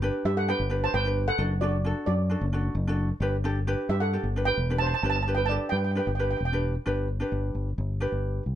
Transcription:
0.02 ukulele D4 G4 B4
0.25 fingered electric bass G2, steel pan G4 E5
0.37 steel pan A4 F#5
0.48 ukulele D4 G4 B4, steel pan B4 G5
0.60 fingered electric bass G1
0.70 ukulele D4 G4 B4
0.84 steel pan C5 A5
0.94 fingered electric bass G1, steel pan B4 G5
1.05 ukulele D4 G4 B4
1.28 steel pan A4 F#5
1.38 fingered electric bass F#1, ukulele D4 F#4 A4
1.61 ukulele D4 F#4 A4, steel pan F#4 D5
1.85 ukulele D4 F#4 A4
2.06 fingered electric bass F#2, steel pan F#4 D5
2.30 ukulele D4 F#4 A4
2.41 fingered electric bass F#1
2.53 ukulele D4 F#4 A4
2.75 fingered electric bass F#1
2.87 ukulele D4 F#4 A4
3.20 fingered electric bass G1, ukulele D4 G4 B4
3.44 ukulele D4 G4 A4
3.67 ukulele D4 G4 B4
3.89 fingered electric bass G2, steel pan G4 E5
4.00 steel pan A4 F#5
4.13 ukulele D4 G4 A4
4.23 fingered electric bass G1
4.36 ukulele D4 G4 B4
4.45 steel pan B4 G5
4.57 fingered electric bass E1
4.70 ukulele D4 G4 B4
4.78 steel pan C5 A5
4.87 steel pan A5
4.94 steel pan A5
5.03 fingered electric bass G1, ukulele D4 G4 B4, steel pan A5
5.10 steel pan A5
5.16 steel pan A5
5.23 steel pan A5
5.28 ukulele D4 G4 B4
5.35 steel pan B4 G5
5.46 ukulele D4, steel pan D5 A5
5.50 ukulele G4 A4
5.69 fingered electric bass G2, steel pan B4 G5
5.77 steel pan G5
5.84 steel pan G5
5.91 ukulele D4, steel pan G5
5.96 ukulele G4 B4, steel pan G5
6.07 fingered electric bass G1, steel pan G5
6.15 steel pan G5
6.19 ukulele D4 G4 B4
6.24 steel pan G5
6.31 steel pan G5
6.37 fingered electric bass E1, steel pan G5
6.45 steel pan G5
6.53 ukulele D4 G4 B4
6.86 fingered electric bass G1, ukulele D4 G4 B4
7.20 ukulele D4 G4 B4
7.32 fingered electric bass G1
7.55 fingered electric bass G1
7.78 fingered electric bass G1
8.00 ukulele D4 G4 B4
8.12 fingered electric bass G1
8.46 fingered electric bass C2

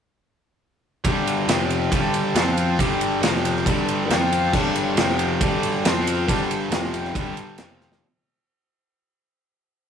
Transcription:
1.05 picked electric bass G1, overdriven electric guitar G2 D3 G3, kick, ride
1.27 ride
1.48 picked electric bass F1, overdriven electric guitar F2 C3 F3, snare, ride
1.70 ride
1.91 picked electric bass G1, overdriven electric guitar G2 D3 G3, kick, ride
2.14 ride
2.35 picked electric bass F2, overdriven electric guitar F3 C4 F4, snare, ride
2.57 ride
2.79 overdriven electric guitar G2 D3 G3, kick, ride
3.01 ride
3.22 picked electric bass F1, overdriven electric guitar F2 C3 F3, snare, ride
3.35 snare
3.45 ride
3.57 snare
3.66 picked electric bass G1, overdriven electric guitar G2 D3 G3, kick, ride
3.88 ride
4.09 picked electric bass F2, overdriven electric guitar F3 C4 F4, snare, ride
4.32 ride
4.53 picked electric bass G1, overdriven electric guitar G2 D3 G3, kick, crash
4.76 ride
4.97 picked electric bass F1, overdriven electric guitar F2 C3 F3, snare, ride
5.09 snare
5.19 ride
5.41 picked electric bass G1, overdriven electric guitar G2 D3 G3, kick, ride
5.63 ride
5.84 picked electric bass F2, overdriven electric guitar F3 C4 F4, snare, ride
6.07 ride
6.27 picked electric bass G1, overdriven electric guitar G2 D3 G3, kick, ride
6.51 ride
6.71 picked electric bass F1, overdriven electric guitar F2 C3 F3, snare, ride
6.84 snare
6.94 ride
7.05 snare
7.15 picked electric bass G1, overdriven electric guitar G2 D3 G3, kick, ride
7.37 ride
7.58 picked electric bass F1, overdriven electric guitar F2 C3 F3, snare, ride
7.81 snare
7.92 snare

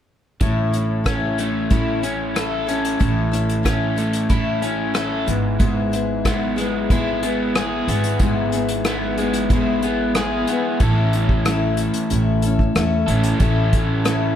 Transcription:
0.40 upright bass A1, steel-string acoustic guitar A2 A3 C#4 E4 A4, kick, closed hi-hat
0.72 steel-string acoustic guitar C#4 E4 A4, closed hi-hat
1.04 steel-string acoustic guitar A3 C#4 E4 A4, kick, cross-stick, closed hi-hat
1.38 overdriven electric guitar A3, steel-string acoustic guitar C#4 E4 A4, closed hi-hat
1.70 steel-string acoustic guitar A2 A3 C#4 E4 A4, kick, closed hi-hat
2.02 steel-string acoustic guitar C#4 E4 A4, closed hi-hat
2.35 steel-string acoustic guitar A3 C#4 E4 A4, cross-stick, closed hi-hat
2.67 steel-string acoustic guitar C#4 E4 A4, closed hi-hat
2.85 closed hi-hat
2.99 upright bass A1, steel-string acoustic guitar A2 A3 C#4 E4 A4, kick, closed hi-hat
3.32 steel-string acoustic guitar C#4 E4 A4, closed hi-hat
3.49 closed hi-hat
3.63 steel-string acoustic guitar A3 C#4 E4 A4, kick, cross-stick, closed hi-hat
3.96 overdriven electric guitar A3, steel-string acoustic guitar C#4 E4 A4, closed hi-hat
4.13 closed hi-hat
4.30 steel-string acoustic guitar A2 A3 C#4 E4 A4, kick, closed hi-hat
4.62 steel-string acoustic guitar C#4 E4 A4, closed hi-hat
4.94 steel-string acoustic guitar A3 C#4 E4 A4, cross-stick, closed hi-hat
5.26 upright bass G#1, overdriven electric guitar G#2, steel-string acoustic guitar B3 E4 G#4, closed hi-hat
5.59 overdriven electric guitar G#2, steel-string acoustic guitar G#3 B3 E4 G#4, kick, closed hi-hat
5.92 steel-string acoustic guitar B3 E4 G#4, closed hi-hat
6.25 steel-string acoustic guitar G#3 B3 E4 G#4, kick, cross-stick, closed hi-hat
6.56 overdriven electric guitar G#3, steel-string acoustic guitar B3 E4 G#4, closed hi-hat
6.90 steel-string acoustic guitar G#3 B3 E4 G#4, kick, closed hi-hat
7.23 steel-string acoustic guitar B3 E4 G#4, closed hi-hat
7.55 steel-string acoustic guitar G#3 B3 E4 G#4, cross-stick, closed hi-hat
7.88 upright bass G#1, steel-string acoustic guitar B3 E4 G#4, closed hi-hat
8.04 closed hi-hat
8.19 overdriven electric guitar G#2, steel-string acoustic guitar G#3 B3 E4 G#4, kick, closed hi-hat
8.52 steel-string acoustic guitar B3 E4 G#4, closed hi-hat
8.69 closed hi-hat
8.85 steel-string acoustic guitar G#3 B3 E4 G#4, cross-stick, closed hi-hat
9.18 overdriven electric guitar G#3, steel-string acoustic guitar B3 E4 G#4, closed hi-hat
9.33 closed hi-hat
9.50 steel-string acoustic guitar G#3 B3 E4 G#4, kick, closed hi-hat
9.83 overdriven electric guitar B3, steel-string acoustic guitar E4 G#4, closed hi-hat
9.87 steel-string acoustic guitar B3
10.15 steel-string acoustic guitar G#3 B3 E4 G#4, cross-stick, closed hi-hat
10.47 steel-string acoustic guitar E4 G#4, closed hi-hat
10.52 steel-string acoustic guitar B3
10.80 upright bass A1, steel-string acoustic guitar A2 A3 C#4 E4 A4, overdriven electric guitar E3, kick, closed hi-hat
11.13 steel-string acoustic guitar C#4 E4 A4, closed hi-hat
11.29 kick
11.45 steel-string acoustic guitar A2 A3 C#4 E4 A4, cross-stick, closed hi-hat
11.77 steel-string acoustic guitar E4 A4, closed hi-hat
11.81 steel-string acoustic guitar C#4
11.94 closed hi-hat
12.10 upright bass A1, steel-string acoustic guitar A3 C#4 E4 A4, closed hi-hat
12.42 steel-string acoustic guitar E4 A4, closed hi-hat
12.46 steel-string acoustic guitar C#4
12.59 kick
12.75 upright bass E2, steel-string acoustic guitar A2 A3 C#4 E4 A4, cross-stick, closed hi-hat
13.08 upright bass A1, overdriven electric guitar A2 E3 A3, steel-string acoustic guitar C#4 E4 A4, closed hi-hat
13.23 closed hi-hat
13.40 upright bass A1, steel-string acoustic guitar A2 A3 C#4 E4 A4, overdriven electric guitar E3, kick, closed hi-hat
13.73 steel-string acoustic guitar C#4 E4 A4, kick, closed hi-hat
14.05 steel-string acoustic guitar A2 A3 C#4 E4 A4, cross-stick, closed hi-hat

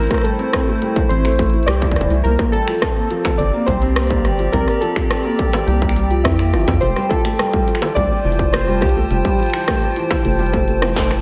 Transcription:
Already playing: ambient pad A3 E4 A4 C5, synth keys A#4
0.04 closed hi-hat
0.07 felt piano A3, kick, cross-stick, closed hi-hat
0.11 cross-stick, closed hi-hat, open hi-hat
0.14 cross-stick, closed hi-hat
0.18 cross-stick, closed hi-hat
0.21 synth keys A4, closed hi-hat
0.25 felt piano G3, closed hi-hat
0.39 felt piano C4, closed hi-hat
0.53 felt piano C4, kick, cross-stick, closed hi-hat
0.68 felt piano A3
0.82 felt piano G3, closed hi-hat
0.96 felt piano E3, kick
1.09 analog synth bass A1, felt piano C4, synth keys C5, closed hi-hat
1.25 felt piano A3, finger snap, closed hi-hat
1.28 closed hi-hat
1.32 closed hi-hat
1.36 closed hi-hat
1.39 felt piano A3, kick, closed hi-hat
1.43 closed hi-hat
1.46 closed hi-hat
1.50 closed hi-hat
1.53 felt piano E4, closed hi-hat
1.63 synth keys D5, closed hi-hat
1.68 analog synth bass C2, felt piano G4, cross-stick, closed hi-hat
1.72 closed hi-hat
1.82 felt piano E3, finger snap, kick, closed hi-hat
1.92 kick
1.96 analog synth bass E1, felt piano E3, cross-stick, closed hi-hat
2.01 kick
2.10 analog synth bass C2, felt piano E3, open hi-hat
2.24 analog synth bass C2, felt piano A#3, ambient pad C4, synth keys A#4, closed hi-hat
2.39 felt piano A#3, kick, cross-stick, closed hi-hat
2.52 felt piano G3, synth keys A4, closed hi-hat
2.68 felt piano F3, finger snap, closed hi-hat
2.71 closed hi-hat
2.75 closed hi-hat
2.78 kick, cross-stick, closed hi-hat
2.82 felt piano C4, closed hi-hat
2.88 ambient pad G4
2.93 felt piano A#3, ambient pad D5
3.11 felt piano F3, closed hi-hat
3.25 finger snap, kick, closed hi-hat, struck metal
3.38 analog synth bass G1, felt piano C4, synth keys D5, closed hi-hat
3.54 felt piano A#3
3.66 analog synth bass C2, felt piano G3, synth keys C5, kick, open hi-hat
3.82 felt piano C4, ambient pad G5, closed hi-hat
3.96 felt piano A#3, cross-stick, closed hi-hat
4.00 closed hi-hat
4.03 closed hi-hat
4.07 kick, closed hi-hat
4.11 felt piano A#3, closed hi-hat
4.25 analog synth bass G1, felt piano G3, cross-stick, closed hi-hat
4.39 felt piano F3, closed hi-hat
4.52 analog synth bass C2, felt piano C4, synth keys A#4, kick, closed hi-hat
4.68 felt piano A#3, cross-stick, open hi-hat
4.81 felt piano F3, synth keys A4, closed hi-hat
4.96 finger snap, kick, closed hi-hat
5.11 felt piano C4, cross-stick, closed hi-hat
5.25 felt piano A#3
5.39 felt piano G3, kick, closed hi-hat
5.53 felt piano C4, struck metal
5.67 analog synth bass C2, felt piano A#3, synth keys G4, closed hi-hat
5.82 felt piano A#3, kick, closed hi-hat
5.89 finger snap
5.96 felt piano G3, closed hi-hat
6.11 felt piano F3, closed hi-hat
6.24 analog synth bass F2, felt piano C4, synth keys E4, kick, cross-stick, closed hi-hat
6.39 felt piano A#3, finger snap, closed hi-hat
6.53 analog synth bass G1, felt piano F3, cross-stick, closed hi-hat
6.68 analog synth bass F2, felt piano F3, kick, open hi-hat, struck metal
6.81 analog synth bass F1, felt piano A3, ambient pad F4, synth keys C5, closed hi-hat
6.96 felt piano G3, cross-stick, closed hi-hat
7.09 felt piano F3, synth keys A4, ambient pad C5, kick, closed hi-hat
7.25 felt piano A3, finger snap, closed hi-hat
7.39 felt piano G3, cross-stick, closed hi-hat
7.53 felt piano G3, kick
7.68 felt piano F3, closed hi-hat
7.75 finger snap
7.82 felt piano E3, closed hi-hat, struck metal
7.95 analog synth bass C2, felt piano A3, synth keys D5, ambient pad A5, kick, closed hi-hat
8.11 felt piano G3, ambient pad G5
8.25 analog synth bass F1, felt piano E3
8.32 open hi-hat
8.39 felt piano E3, kick, closed hi-hat
8.52 felt piano A3, synth keys C5, cross-stick, closed hi-hat
8.68 felt piano G3, closed hi-hat
8.81 analog synth bass C2, felt piano F3, synth keys G4, kick, cross-stick, closed hi-hat
8.89 closed hi-hat
8.96 felt piano A3
9.11 analog synth bass F1, felt piano G3, closed hi-hat
9.25 felt piano G3, kick, open hi-hat
9.39 felt piano F3, closed hi-hat
9.43 closed hi-hat
9.46 closed hi-hat
9.50 finger snap, closed hi-hat
9.54 felt piano E3, closed hi-hat
9.57 closed hi-hat
9.61 closed hi-hat
9.64 cross-stick, closed hi-hat
9.68 felt piano A3, kick, closed hi-hat
9.82 felt piano G3, closed hi-hat
9.96 felt piano E3, closed hi-hat
10.11 felt piano E3, finger snap, kick, closed hi-hat, struck metal
10.25 analog synth bass F1, felt piano A3, closed hi-hat
10.39 felt piano G3, closed hi-hat
10.43 closed hi-hat
10.46 closed hi-hat
10.50 closed hi-hat
10.53 felt piano A3, kick, closed hi-hat
10.68 felt piano A3, open hi-hat
10.82 felt piano E3, cross-stick, closed hi-hat, high tom
10.89 closed hi-hat
10.96 felt piano A3, finger snap, kick, snare
11.11 felt piano E3, finger snap, cross-stick, closed hi-hat

